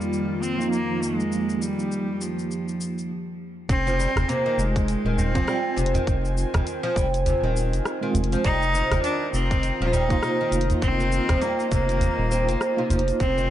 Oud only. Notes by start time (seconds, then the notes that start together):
3.87 F3
3.99 G3
4.29 C3
4.46 D#3
5.06 D#3
5.35 F3
5.47 G3
5.77 C3
5.94 D#3
6.54 D#3
6.83 F3
6.96 G3
7.26 C3
7.43 D#3
8.03 D#3
8.33 F3
8.45 G3
8.75 C3
8.92 D#3
9.51 D#3
9.82 F3
9.93 G3
10.23 C3
10.41 D#3
11.00 D#3
11.30 F3
11.42 G3
11.72 C3
11.90 D#3
12.32 C4
12.49 C4
12.78 C3
12.91 F3
13.21 C3
13.38 D#3